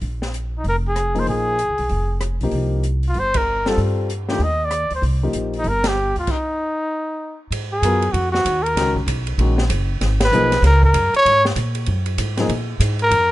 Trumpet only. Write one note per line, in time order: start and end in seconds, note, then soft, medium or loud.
0.58 0.66 D#4 medium
0.69 0.77 A#4 medium
0.88 1.21 G#4 medium
1.19 1.29 C5 medium
1.30 2.18 G#4 medium
3.08 3.21 F4 medium
3.19 3.39 C5 medium
3.37 3.70 A#4 medium
3.69 3.79 A4 medium
4.30 4.45 G4 medium
4.43 4.67 D#5 medium
4.65 4.94 D5 medium
4.95 5.04 C5 medium
5.59 5.70 D#4 medium
5.68 5.90 A#4 medium
5.88 6.18 G4 medium
6.19 6.33 F4 medium
6.31 7.42 D#4 medium
7.73 8.14 G#4 medium
8.13 8.31 F#4 medium
8.32 8.64 F#4 medium
8.63 8.95 A#4 medium
10.24 10.62 B4 medium
10.66 10.83 A#4 medium
10.84 11.13 A#4 medium
11.16 11.44 C#5 loud
13.02 13.32 A#4 medium